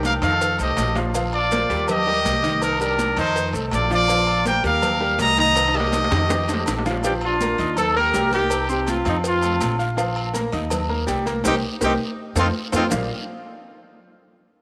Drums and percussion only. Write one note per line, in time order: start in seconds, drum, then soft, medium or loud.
0.03 cowbell medium
0.03 high conga loud
0.03 high timbale medium
0.03 low agogo medium
0.03 short guiro medium
0.03 maracas medium
0.22 cowbell medium
0.22 high conga soft
0.22 high timbale loud
0.22 low agogo loud
0.22 short guiro medium
0.22 maracas soft
0.41 cowbell loud
0.41 high conga soft
0.41 long guiro medium
0.41 maracas medium
0.59 high conga soft
0.59 low agogo medium
0.59 maracas medium
0.77 cowbell medium
0.77 low timbale loud
0.77 low agogo loud
0.77 short guiro medium
0.77 maracas medium
0.95 low timbale loud
0.95 short guiro medium
0.95 maracas soft
1.14 cowbell loud
1.14 high conga soft
1.14 low agogo medium
1.14 long guiro medium
1.14 maracas medium
1.33 high conga soft
1.33 low agogo loud
1.51 cowbell medium
1.51 high conga loud
1.51 short guiro medium
1.51 maracas medium
1.70 high conga soft
1.70 low agogo medium
1.70 short guiro medium
1.70 maracas soft
1.88 cowbell loud
1.88 high conga soft
1.88 low conga medium
1.88 low agogo loud
1.88 long guiro medium
1.88 maracas medium
2.07 high conga soft
2.25 cowbell medium
2.25 high conga medium
2.25 low timbale medium
2.25 low agogo medium
2.25 short guiro medium
2.25 maracas medium
2.44 cowbell medium
2.44 high conga medium
2.44 short guiro medium
2.44 maracas soft
2.62 cowbell loud
2.62 low agogo loud
2.62 long guiro medium
2.62 maracas medium
2.80 high conga soft
2.80 low agogo medium
2.80 maracas medium
2.98 cowbell medium
2.98 high conga medium
2.98 low agogo medium
2.98 short guiro medium
2.98 maracas medium
3.16 cowbell medium
3.16 high conga soft
3.16 low agogo loud
3.16 short guiro medium
3.16 maracas soft
3.36 cowbell loud
3.36 high conga soft
3.36 long guiro medium
3.36 maracas medium
3.53 high conga soft
3.53 low agogo medium
3.53 maracas medium
3.71 cowbell medium
3.71 high conga soft
3.71 low timbale medium
3.71 low agogo loud
3.71 short guiro medium
3.71 maracas medium
3.90 short guiro medium
3.90 maracas soft
4.08 cowbell loud
4.08 high conga soft
4.08 low agogo medium
4.08 long guiro medium
4.08 maracas medium
4.27 high conga soft
4.27 low agogo loud
4.46 cowbell medium
4.46 high conga loud
4.46 short guiro medium
4.46 maracas medium
4.64 high conga soft
4.64 low agogo medium
4.64 short guiro medium
4.64 maracas soft
4.82 cowbell loud
4.82 high conga soft
4.82 low conga medium
4.82 low agogo loud
4.82 long guiro medium
4.82 maracas medium
5.01 high conga soft
5.19 cowbell medium
5.19 high conga medium
5.19 low timbale medium
5.19 low agogo medium
5.19 short guiro medium
5.19 maracas medium
5.38 cowbell medium
5.38 high conga medium
5.38 short guiro medium
5.38 maracas soft
5.56 cowbell loud
5.56 high timbale loud
5.56 low agogo loud
5.56 long guiro medium
5.56 maracas medium
5.68 high timbale medium
5.74 high conga soft
5.74 low agogo loud
5.80 low timbale loud
5.92 cowbell medium
5.92 high conga loud
5.92 high timbale medium
5.92 low agogo medium
5.92 short guiro medium
5.92 maracas medium
6.04 low timbale loud
6.11 cowbell medium
6.11 high bongo medium
6.11 high conga soft
6.11 low agogo loud
6.11 short guiro medium
6.11 maracas soft
6.17 high timbale medium
6.29 cowbell loud
6.29 high bongo loud
6.29 high conga soft
6.29 low timbale medium
6.29 long guiro medium
6.29 maracas medium
6.48 low bongo loud
6.48 high conga soft
6.48 low agogo medium
6.48 maracas medium
6.54 low timbale loud
6.66 cowbell medium
6.66 low bongo medium
6.66 high conga soft
6.66 low agogo loud
6.66 short guiro medium
6.66 maracas medium
6.78 low timbale loud
6.86 low bongo medium
6.86 short guiro medium
6.86 maracas soft
6.90 low timbale loud
7.03 cowbell loud
7.03 high conga soft
7.03 low agogo medium
7.03 long guiro medium
7.03 maracas medium
7.21 high conga soft
7.21 low agogo loud
7.41 cowbell medium
7.41 high conga loud
7.41 short guiro medium
7.41 maracas medium
7.58 low agogo medium
7.58 short guiro medium
7.58 maracas soft
7.77 cowbell loud
7.77 high conga soft
7.77 low conga medium
7.77 low agogo loud
7.77 long guiro medium
7.77 maracas medium
7.95 high conga soft
8.13 cowbell medium
8.13 high conga medium
8.13 low timbale medium
8.13 low agogo medium
8.13 short guiro medium
8.13 maracas medium
8.32 cowbell medium
8.32 high conga medium
8.32 short guiro medium
8.32 maracas soft
8.50 cowbell loud
8.50 low agogo loud
8.50 long guiro medium
8.50 maracas medium
8.69 high conga soft
8.69 low agogo medium
8.69 maracas medium
8.87 cowbell medium
8.87 high conga loud
8.87 low agogo medium
8.87 short guiro medium
8.87 maracas medium
9.05 cowbell medium
9.05 low agogo loud
9.05 short guiro medium
9.05 maracas soft
9.24 cowbell loud
9.24 high conga soft
9.24 long guiro medium
9.24 maracas medium
9.42 high conga soft
9.42 low agogo medium
9.42 maracas medium
9.60 cowbell medium
9.60 high conga soft
9.60 low timbale medium
9.60 low agogo loud
9.60 short guiro medium
9.60 maracas medium
9.79 short guiro medium
9.79 maracas soft
9.98 cowbell loud
9.98 high conga soft
9.98 low agogo medium
9.98 long guiro medium
9.98 maracas medium
10.16 high conga soft
10.16 low agogo loud
10.35 cowbell medium
10.35 high conga loud
10.35 short guiro medium
10.35 maracas medium
10.52 high conga soft
10.52 low agogo medium
10.52 short guiro medium
10.52 maracas soft
10.70 cowbell loud
10.70 high conga soft
10.70 low conga medium
10.70 low agogo loud
10.70 long guiro medium
10.70 maracas medium
10.91 high conga soft
11.08 cowbell medium
11.08 high conga medium
11.08 low agogo medium
11.08 short guiro medium
11.08 maracas medium
11.27 cowbell medium
11.27 high conga medium
11.27 short guiro medium
11.27 maracas soft
11.44 cowbell loud
11.44 high conga loud
11.44 high timbale loud
11.44 long guiro loud
11.44 maracas loud
11.81 cowbell loud
11.81 high conga medium
11.81 high timbale medium
11.81 long guiro loud
11.81 maracas loud
12.36 cowbell loud
12.36 high conga loud
12.36 high timbale loud
12.36 long guiro loud
12.36 maracas loud
12.72 cowbell loud
12.72 high conga loud
12.72 high timbale loud
12.72 long guiro loud
12.72 maracas loud
12.91 low bongo loud
12.91 low conga loud
12.91 low timbale loud
12.91 long guiro loud
12.91 maracas loud